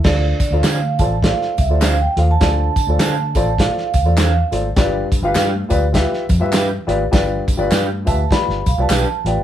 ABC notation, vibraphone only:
X:1
M:4/4
L:1/16
Q:"Swing" 1/4=102
K:Dm
V:1 name="Vibraphone"
d3 f3 a2 f2 e2 f g2 a | a8 f2 f4 z2 | z16 | z6 a2 =b2 f a3 g2 |]